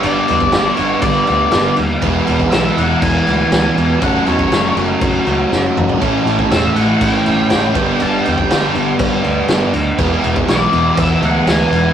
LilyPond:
<<
  \new Staff \with { instrumentName = "Lead electric guitar" } { \time 4/4 \key g \lydian \tempo 4 = 120 d''4. cis''8 d''4. r8 | r4 e''8 fis''8 gis''2 | fis''8 cis''4 r2 r8 | r4 e''8 fis''8 g''2 |
a''8 g''4 r2 r8 | r4 d''4 e''8 fis''8 gis''4 | }
  \new Staff \with { instrumentName = "Distorted electric guitar" } { \time 4/4 \key g \lydian <g b d' g'>2.~ <g b d' g'>8 r8 | <e b e' gis'>1 | <fis cis' fis' a'>1 | <a cis' e' a'>2.~ <a cis' e' a'>8 <g b d' g'>8~ |
<g b d' g'>2.~ <g b d' g'>8 r8 | <e b e' gis'>1 | }
  \new Staff \with { instrumentName = "Distorted electric guitar" } { \time 4/4 \key g \lydian <g, d g b d'>8 <g, d g b d'>8 <g, d g b d'>8 <g, d g b d'>8 <g, d g b d'>8 <g, d g b d'>8 <g, d g b d'>8 <g, d g b d'>8 | <e gis b e'>8 <e gis b e'>8 <e gis b e'>8 <e gis b e'>8 <e gis b e'>8 <e gis b e'>8 <e gis b e'>8 <e gis b e'>8 | <fis a cis' fis'>8 <fis a cis' fis'>8 <fis a cis' fis'>8 <fis a cis' fis'>8 <fis a cis' fis'>8 <fis a cis' fis'>8 <fis a cis' fis'>8 <fis a cis' fis'>8 | <a, e a cis' e'>8 <a, e a cis' e'>8 <a, e a cis' e'>8 <a, e a cis' e'>8 <a, e a cis' e'>8 <a, e a cis' e'>8 <a, e a cis' e'>8 <g, d g b d'>8 |
<g, d g b d'>8 <g, d g b d'>8 <g, d g b d'>8 <g, d g b d'>8 <g, d g b d'>8 <g, d g b d'>8 <g, d g b d'>8 <g, d g b d'>8 | <e gis b e'>8 <e gis b e'>8 <e gis b e'>8 <e gis b e'>8 <e gis b e'>8 <e gis b e'>8 <e gis b e'>8 <e gis b e'>8 | }
  \new Staff \with { instrumentName = "Distorted electric guitar" } { \clef bass \time 4/4 \key g \lydian <g, d g>4 <g, d g>2~ <g, d g>8 r8 | <e, b, e>4. <e, b, e>2~ <e, b, e>8 | <fis, cis fis>4. <fis, cis fis>2~ <fis, cis fis>8 | <a, e a>4. <a, e a>2 <g, d g>8~ |
<g, d g>4 <g, d g>2~ <g, d g>8 r8 | <e, b, e>4. <e, b, e>2~ <e, b, e>8 | }
  \new Staff \with { instrumentName = "Picked electric bass" } { \clef bass \time 4/4 \key g \lydian g,,8 e,8 g,,8 g,,8 g,,8 d,8 g,,8 dis,8 | e,,8 e,,8 b,,8 e,,8 e,,8 d,8 d,8 e,8 | fis,,8 e,8 fis,,8 fis,,8 fis,,8 cis,8 fis,,8 fis,,8 | a,,8 a,,8 e,,8 a,,8 a,,8 g,,8 g,,8 g,,8 |
g,,8 e,8 g,,8 g,,8 g,,8 d,8 g,,8 d,8 | e,,8 e,,8 b,,8 e,,8 e,,8 d,8 d,8 e,,8 | }
  \new DrumStaff \with { instrumentName = "Drums" } \drummode { \time 4/4 cymc8 cymc16 bd16 <cymc sn>8 cymc8 <cymc bd>8 cymc8 <cymc sn>8 cymc8 | <cymc bd>8 cymc16 bd16 <cymc sn>8 cymc8 <cymc bd>8 cymc8 <cymc sn>8 cymc8 | <cymc bd>8 cymc16 bd16 <cymc sn>8 cymc8 <cymc bd>8 cymc8 sn8 toml16 tomfh16 | <cymc bd>8 cymc16 bd16 <cymc sn>8 cymc8 <cymc bd>8 cymc8 <cymc sn>8 <cymc bd>8 |
cymc8 cymc16 bd16 <cymc sn>8 cymc8 <cymc bd>8 cymc8 <cymc sn>8 cymc8 | <cymc bd>8 cymc16 bd16 <cymc sn>8 cymc8 <cymc bd>8 cymc8 <cymc sn>8 cymc8 | }
>>